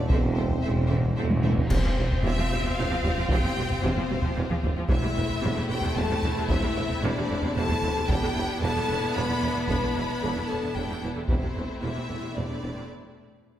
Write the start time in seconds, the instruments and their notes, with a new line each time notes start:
Already playing: french horn section D4, violin section D5
0.02 timpani E2
0.08 double bass section E1, timpani E2, cello section E2, french horn section C4, violin section C5 E5, taiko
0.12 tuba E1, timpani E2, viola section C4 A4
0.24 timpani E2
0.31 timpani E2
0.35 timpani E2, viola section C4 A4, violin section C5 E5
0.46 timpani E2
0.50 timpani E2, taiko low
0.61 timpani E2, cello section E2, violin section C5 E5
0.65 double bass section E1, tuba E1, timpani E2, viola section C4 A4
0.75 timpani E2
0.83 timpani E2, violin section E5
0.87 timpani E2, viola section C4 A4, violin section C5
0.98 timpani E2
1.03 timpani E2, taiko low
1.13 timpani E2, cello section E2, violin section C5 E5
1.18 double bass section E1, tuba E1, viola section C4 A4
1.22 timpani E2
1.28 timpani E2, taiko high
1.37 timpani E2
1.43 timpani E2, viola section C4 A4, violin section C5 E5, taiko high
1.52 timpani E2
1.57 timpani E2, taiko low
1.70 double bass section E1, tuba E1, cello section E2, timpani E2, viola section C3 C4, french horn section C4, violin section C4 F4 C5, concert bass drum, taiko, crash
1.84 cello section E2, viola section F3
1.97 double bass section E1, tuba E1, cello section E2, viola section G3
2.11 taiko low
2.23 double bass section E1, tuba E1, cello section E2, viola section C3, french horn section F4, violin section E5
2.37 cello section E2, viola section F3
2.49 tuba E1, double bass section E1, cello section E2, viola section G3
2.63 cello section E2, viola section F3, taiko low
2.75 tuba E1, double bass section E1, cello section E2, viola section C3, french horn section F4, violin section F5
2.90 cello section E2, viola section F3, taiko low
3.03 double bass section E1, tuba E1, cello section E2, viola section G3, taiko low
3.16 cello section E2, viola section F3
3.29 tuba E1, double bass section E1, cello section E2, viola section C3, french horn section G4, violin section G5, taiko
3.44 cello section E2, viola section F3
3.56 tuba E1, double bass section E1, cello section E2, viola section G3
3.70 taiko low
3.83 double bass section E1, tuba E1, cello section E2, viola section C3, french horn section C4, violin section C5
3.96 cello section E2, viola section F3
4.10 double bass section E1, tuba E1, cello section E2, viola section G3
4.22 cello section E2, viola section F3, taiko low
4.36 double bass section E1, tuba E1, cello section E2, viola section C3
4.50 cello section E2, viola section F3, taiko low
4.63 double bass section E1, tuba E1, cello section E2, viola section G3, taiko low
4.77 cello section E2, viola section F3
4.88 double bass section E1, tuba E1, cello section E2, viola section C3 A3, violin section C4 E4 E5, french horn section E4, taiko
5.02 cello section E2, viola section C3
5.16 double bass section E1, tuba E1, cello section E2, viola section E3
5.30 taiko low
5.42 double bass section E1, tuba E1, cello section E2, viola section C3
5.56 cello section E2, viola section C3
5.69 tuba E1, double bass section E1, cello section E2, viola section E3, french horn section G4, violin section G5
5.82 cello section E2, viola section C3, taiko low
5.96 tuba E1, double bass section E1, cello section E2, viola section C3, french horn section A4, violin section A5
6.10 cello section E2, viola section C3, taiko low
6.23 tuba E1, double bass section E1, cello section E2, viola section E3, taiko low
6.37 cello section E2, viola section C3
6.49 tuba E1, double bass section E1, cello section E2, viola section C3, french horn section E4, violin section E5, taiko
6.63 cello section E2, viola section C3
6.76 tuba E1, double bass section E1, cello section E2, viola section E3
6.89 taiko low
7.01 double bass section E1, tuba E1, cello section E2, viola section C3, french horn section D4, violin section D5
7.17 cello section E2, viola section C3
7.30 double bass section E1, tuba E1, cello section E2, viola section E3
7.42 cello section E2, viola section C3, taiko low
7.55 double bass section E1, tuba E1, cello section E2, viola section C3, french horn section A4, violin section A5
7.68 cello section E2, viola section C3, taiko low
7.82 tuba E1, double bass section E1, cello section E2, viola section E3, taiko low
7.96 cello section E2, viola section C3
8.08 double bass section E1, tuba E1, cello section E2, viola section D3 B3, violin section D4 E4 G5, french horn section G4, taiko
8.23 cello section E2, viola section D3
8.35 double bass section E1, tuba E1, cello section E2, viola section E3
8.62 tuba E1, double bass section E1, cello section E2, viola section D3, french horn section A4, violin section A5
8.76 cello section E2, viola section D3
8.88 tuba E1, double bass section E1, cello section E2, viola section E3
9.02 cello section E2, viola section D3
9.16 tuba E1, double bass section E1, cello section E2, viola section D3, french horn section B4, violin section B5
9.29 cello section E2, viola section D3
9.42 double bass section E1, tuba E1, cello section E2, viola section E3
9.56 cello section E2, viola section D3
9.68 double bass section E1, tuba E1, cello section E2, viola section D3, french horn section B4, violin section B5, taiko
9.82 cello section E2, viola section D3
9.96 double bass section E1, tuba E1, cello section E2, viola section E3
10.22 tuba E1, double bass section E1, cello section E2, viola section D3
10.37 cello section E2, viola section D3
10.47 tuba E1, double bass section E1, cello section E2, viola section E3, french horn section A4, violin section A5
10.63 cello section E2, viola section D3
10.75 double bass section E1, tuba E1, cello section E2, viola section D3, french horn section G4, violin section G5
10.89 cello section E2, viola section D3
11.02 tuba E1, double bass section E1, cello section E2, viola section E3
11.15 cello section E2, viola section D3
11.27 double bass section E1, tuba E1, cello section E2, viola section C3 A3, french horn section C4, violin section C4 E4 C5, taiko
11.43 cello section E2, viola section C3
11.56 double bass section E1, tuba E1, cello section E2, viola section E3
11.81 double bass section E1, tuba E1, cello section E2, viola section C3, french horn section E4, violin section E5
11.95 cello section E2, viola section C3
12.09 tuba E1, double bass section E1, cello section E2, viola section E3
12.22 cello section E2, viola section C3
12.33 tuba E1, double bass section E1, cello section E2, viola section C3, french horn section D4, violin section D5
12.48 cello section E2, viola section C3
12.63 tuba E1, double bass section E1, cello section E2, viola section E3
12.76 cello section E2, viola section C3